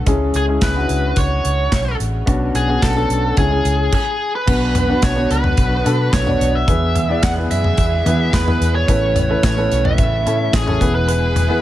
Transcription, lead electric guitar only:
0.36 0.44 G#4 medium
0.63 1.19 B4 medium
1.18 1.96 C#5 medium
2.56 2.81 G#4 medium
2.83 3.38 A4 medium
3.38 3.93 G#4 medium
3.95 4.32 G#4 medium
4.35 5.04 B4 medium
5.04 5.31 C#5 medium
5.32 6.13 B4 medium
6.14 6.56 C#5 medium
6.55 7.23 E5 medium
7.23 7.31 F#5 medium
7.51 8.36 E5 medium
8.34 8.75 B4 medium
8.75 9.43 C#5 medium
9.44 9.82 C#5 medium
9.86 10.56 E5 medium
10.54 10.92 G#4 medium
10.95 11.07 B4 medium
11.09 11.62 B4 medium

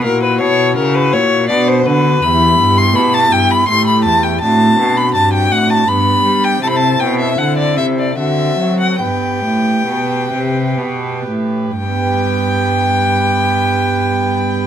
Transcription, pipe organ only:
0.01 0.37 A#2 soft
0.01 1.45 E4 soft
0.01 1.46 F#4 soft
0.41 0.74 B2 soft
0.77 1.10 C#3 soft
1.14 1.47 A#2 soft
1.46 2.17 B3 soft
1.46 2.19 D4 soft
1.46 2.20 F#4 soft
1.51 1.83 B2 soft
1.87 2.20 D3 soft
2.19 3.63 B3 soft
2.19 3.64 E4 soft
2.19 3.65 G4 soft
2.24 2.56 E2 soft
2.60 2.93 G2 soft
2.96 3.29 B2 soft
3.33 3.66 G2 soft
3.65 4.38 A3 soft
3.65 4.39 E4 soft
3.65 4.39 G4 soft
3.70 4.02 A2 medium
4.06 4.39 E2 soft
4.38 5.82 C4 soft
4.38 5.83 D4 soft
4.38 5.84 F#4 soft
4.43 4.75 A2 soft
4.79 5.12 B2 soft
5.15 5.48 G2 soft
5.52 5.85 A2 soft
5.84 6.58 B3 soft
5.84 6.59 D4 soft
5.84 6.59 G4 soft
5.88 6.21 G2 soft
6.25 6.59 G3 soft
6.58 8.11 C4 soft
6.58 8.12 E4 soft
6.58 8.13 A4 soft
6.63 6.96 C3 soft
7.01 7.35 B2 soft
7.38 7.74 D3 soft
7.78 8.13 C3 soft
8.13 8.95 C4 soft
8.13 8.96 F#4 soft
8.13 8.97 A4 soft
8.18 8.54 D3 soft
8.58 8.96 F#3 soft
8.95 9.39 B3 soft
8.95 11.71 G4 soft
8.95 11.72 B4 soft
9.00 9.39 G2 soft
9.43 9.83 A2 soft
9.87 10.29 B2 soft
10.32 10.75 C3 soft
10.79 11.23 B2 soft
11.28 11.72 A2 soft
11.76 14.67 G3 soft
11.83 14.67 B3 soft
11.90 14.67 G4 soft
11.97 14.67 B4 soft
12.04 14.67 G5 soft

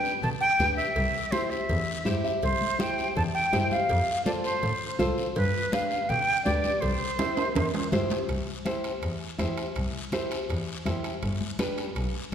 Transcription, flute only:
0.00 0.20 G5 loud
0.23 0.29 A5 loud
0.41 0.75 G5 loud
0.77 1.33 E5 medium
1.31 1.51 C5 medium
1.50 2.06 E5 medium
2.43 2.82 C5 medium
2.80 3.16 G5 loud
3.16 3.22 A5 loud
3.34 3.68 G5 loud
3.71 4.22 F5 medium
4.26 4.32 D5 medium
4.44 4.95 C5 medium
5.36 5.75 B4 loud
5.73 6.11 F5 loud
6.09 6.44 G5 loud
6.45 6.82 D5 medium
6.81 7.92 C5 medium

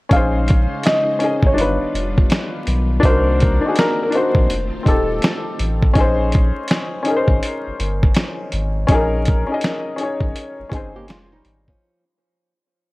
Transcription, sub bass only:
0.11 0.67 A#1 loud
1.43 1.55 G#1 medium
1.57 1.78 G1 loud
1.81 1.86 F1 soft
1.94 2.27 F1 loud
2.67 3.00 B1 medium
3.04 3.59 C2 loud
4.35 4.47 A#1 medium
4.50 4.71 F1 loud
4.74 4.79 D#1 soft
4.86 5.19 D#1 loud
5.59 5.92 A1 loud
5.96 6.52 A#1 loud
7.28 7.40 G#1 medium
7.67 7.72 G1 soft
7.80 8.12 G1 loud
8.53 8.85 G#1 medium
8.89 9.45 A#1 loud
10.21 10.33 G#1 medium
10.59 10.64 G1 soft
10.72 11.10 G1 medium
11.09 11.42 F1 loud
11.45 11.78 G#1 medium

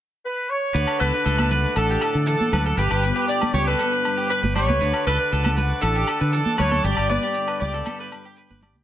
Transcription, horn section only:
0.26 0.48 B4 medium
0.49 1.00 C#5 loud
1.01 1.72 B4 loud
1.76 2.23 A4 medium
2.28 2.75 A4 medium
2.77 3.28 B4 medium
3.28 3.52 D5 medium
3.54 3.66 C#5 loud
3.67 4.27 B4 loud
4.30 4.41 B4 medium
4.55 5.03 C#5 loud
5.07 5.53 B4 medium
5.81 6.30 A4 medium
6.34 6.58 A4 medium
6.59 6.83 C#5 loud
6.84 7.09 D5 loud
7.10 7.58 D5 loud
7.60 8.08 D5 medium

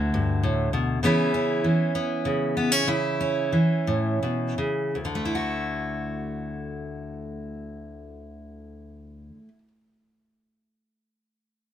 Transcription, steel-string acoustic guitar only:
0.00 0.13 D2 medium
0.00 1.03 D3 medium
0.00 0.17 A3 medium
0.00 1.05 E4 soft
0.00 1.00 F#4 medium
0.14 0.43 G2 medium
0.43 0.73 A2 medium
0.73 1.02 B2 medium
1.03 1.63 C#3 medium
1.03 1.64 E3 medium
1.03 1.95 B3 medium
1.03 1.34 C#4 medium
1.03 2.87 E4 medium
1.34 2.56 C#4 soft
1.64 3.52 E3 soft
1.95 2.56 B3 medium
2.25 2.84 C#3 medium
2.57 2.72 B3 soft
2.72 2.88 C#4 soft
2.87 3.53 C#3 medium
2.87 5.24 E4 medium
3.21 4.91 C#4 soft
3.52 4.90 E3 soft
3.87 4.22 A2 medium
4.23 4.58 B2 soft
4.58 4.95 C#3 soft
4.95 9.28 D2 soft
5.05 9.38 D3 soft
5.15 9.48 A3 soft
5.25 9.58 E4 soft
5.35 9.68 F#4 soft

